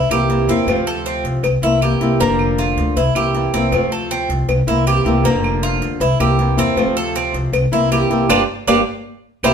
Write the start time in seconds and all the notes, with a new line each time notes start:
Already playing: E4
0.09 C2 E3 A#3 C4 E4 G4, claves
0.29 E3 A#3 C4 E4, cowbell
0.48 E2 E3 A#3 C4 E4, cowbell
0.67 F2 C3 F3 A3 C4 F4, cowbell, claves
0.76 D2
0.87 A4
1.06 C4, cowbell
1.24 C2, cowbell
1.43 C2, muted nylon-string guitar stroke, cowbell, claves
1.62 C2 E3 A#3 C4 E4
1.82 E3 A#3 C4 E4 G4, cowbell, claves
2.00 C2 E3 A#3 C4 E4, cowbell
2.20 G1 D3 F3 A#3 D4 G4, cowbell
2.29 F1
2.39 claves
2.58 F4, cowbell
2.77 D2, cowbell
2.96 C2 E4, muted nylon-string guitar stroke, cowbell
3.15 C2 E3 A#3 C4 E4 G4, claves
3.35 E3 A#3 C4 E4, cowbell
3.53 C2 E3 A#3 C4 E4, cowbell
3.72 F2 C3 F3 A3 C4 F4, cowbell, claves
3.82 D2
3.92 A4
4.11 C4, cowbell
4.29 C2, cowbell
4.48 C2, muted nylon-string guitar stroke, cowbell, claves
4.67 C2 E3 A#3 C4 E4
4.86 E3 A#3 C4 E4 G4, cowbell, claves
5.05 C2 E3 A#3 C4 E4, cowbell
5.24 G1 D3 F3 A#3 D4 G4, cowbell
5.34 F1
5.44 claves
5.63 F4, cowbell
5.82 D2, cowbell
6.00 C2 E4, muted nylon-string guitar stroke, cowbell
6.20 C2 E3 A#3 C4 E4 G4, claves
6.38 E3 A#3 C4 E4, cowbell
6.57 E2 E3 A#3 C4 E4, cowbell
6.76 F2 C3 F3 A3 C4 F4, cowbell, claves
6.86 D2
6.97 A4
7.16 C4, cowbell
7.34 C2, cowbell
7.53 C2, muted nylon-string guitar stroke, cowbell, claves
7.71 C2 E3 A#3 C4 E4
7.91 E3 A#3 C4 E4 G4, cowbell, claves
8.10 C2 E3 A#3 C4 E4, cowbell
8.29 G1 G3 A#3 D4 F4 G4, cowbell, claves
8.67 G1 G3 A#3 D4 F4 G4, cowbell, claves
9.43 C2 G3 A#3 C4 E4 G4, cowbell, claves